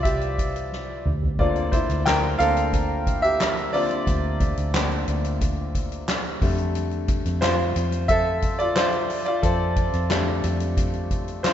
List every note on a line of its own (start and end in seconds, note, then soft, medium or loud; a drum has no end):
0.00 1.01 C2 medium
0.00 1.07 E3 medium
0.00 1.07 G3 soft
0.00 1.06 C4 medium
0.00 1.06 E4 medium
0.00 1.07 F4 medium
0.00 0.05 G4 medium
0.00 1.06 C5 medium
0.00 1.07 D5 loud
0.00 1.00 E5 medium
0.05 1.01 G4 medium
0.05 kick medium
0.05 closed hi-hat medium
0.21 closed hi-hat soft
0.38 kick medium
0.38 closed hi-hat medium
0.56 closed hi-hat soft
0.72 snare medium
1.05 1.85 D2 medium
1.05 mid tom medium
1.22 floor tom medium
1.39 2.35 D3 soft
1.39 2.36 A#3 soft
1.39 2.36 C4 medium
1.39 1.71 F4 medium
1.39 1.70 D5 medium
1.39 kick medium
1.39 crash medium
1.56 closed hi-hat soft
1.72 2.04 E4 medium
1.72 2.07 C5 medium
1.72 kick medium
1.72 closed hi-hat medium
1.89 2.36 D2 medium
1.89 snare soft
1.89 closed hi-hat soft
2.06 2.38 A#4 medium
2.06 2.37 G5 medium
2.06 snare loud
2.06 clap medium
2.06 closed hi-hat medium
2.39 4.03 D2 loud
2.39 2.69 D3 soft
2.39 2.70 A#3 soft
2.39 2.70 C4 medium
2.39 3.20 A4 medium
2.39 3.19 F5 loud
2.39 closed hi-hat medium
2.57 closed hi-hat medium
2.73 kick medium
2.73 closed hi-hat medium
3.07 kick medium
3.07 closed hi-hat medium
3.22 3.71 G4 medium
3.22 3.75 E5 loud
3.22 closed hi-hat soft
3.40 snare medium
3.40 clap medium
3.40 closed hi-hat medium
3.57 closed hi-hat soft
3.73 4.72 D3 medium
3.73 4.73 A#3 medium
3.73 4.73 C4 medium
3.73 5.71 F4 medium
3.73 5.70 D5 medium
3.73 open hi-hat medium
3.91 closed hi-hat soft
4.07 4.54 D2 loud
4.07 kick medium
4.07 closed hi-hat medium
4.40 kick medium
4.40 closed hi-hat medium
4.57 5.04 D2 medium
4.57 closed hi-hat medium
4.74 5.04 D3 soft
4.74 5.04 A#3 soft
4.74 5.04 C4 soft
4.74 snare loud
4.74 clap medium
4.74 closed hi-hat medium
4.91 closed hi-hat soft
5.08 6.38 D2 loud
5.08 closed hi-hat medium
5.25 closed hi-hat medium
5.41 kick medium
5.41 closed hi-hat medium
5.75 kick medium
5.75 closed hi-hat medium
5.92 closed hi-hat soft
6.08 snare loud
6.08 clap medium
6.08 closed hi-hat medium
6.25 closed hi-hat soft
6.41 7.22 F2 medium
6.41 6.86 D3 medium
6.41 6.86 G3 soft
6.41 6.87 A3 medium
6.41 kick loud
6.41 open hi-hat medium
6.58 closed hi-hat medium
6.75 closed hi-hat medium
6.91 closed hi-hat soft
7.08 kick loud
7.08 closed hi-hat medium
7.25 7.72 F2 medium
7.25 snare soft
7.25 closed hi-hat medium
7.41 8.06 F4 medium
7.41 8.05 C5 medium
7.41 snare loud
7.41 clap medium
7.41 closed hi-hat medium
7.76 9.39 F2 medium
7.76 closed hi-hat medium
7.92 closed hi-hat medium
8.08 8.57 A4 medium
8.08 8.61 E5 loud
8.08 kick medium
8.08 closed hi-hat medium
8.42 kick medium
8.42 closed hi-hat medium
8.59 8.76 F4 medium
8.59 8.76 D5 medium
8.59 closed hi-hat soft
8.76 9.24 F4 medium
8.76 9.23 C5 loud
8.76 snare loud
8.76 clap medium
8.76 closed hi-hat medium
8.93 closed hi-hat soft
9.10 open hi-hat medium
9.25 9.43 F4 medium
9.25 9.43 D5 medium
9.25 closed hi-hat medium
9.42 9.90 F2 medium
9.42 11.41 C4 medium
9.42 11.40 A4 medium
9.42 kick loud
9.42 closed hi-hat medium
9.76 kick medium
9.76 closed hi-hat medium
9.93 10.40 F2 medium
9.93 snare soft
9.93 closed hi-hat medium
10.10 11.07 D3 medium
10.10 11.07 G3 soft
10.10 11.07 A3 medium
10.10 snare loud
10.10 clap medium
10.10 closed hi-hat medium
10.44 11.53 F2 medium
10.44 closed hi-hat medium
10.60 closed hi-hat medium
10.77 kick medium
10.77 closed hi-hat medium
10.94 closed hi-hat soft
11.11 kick medium
11.11 closed hi-hat medium
11.28 closed hi-hat soft
11.43 11.53 F4 medium
11.43 11.53 C5 medium
11.43 snare loud
11.43 clap medium
11.43 closed hi-hat medium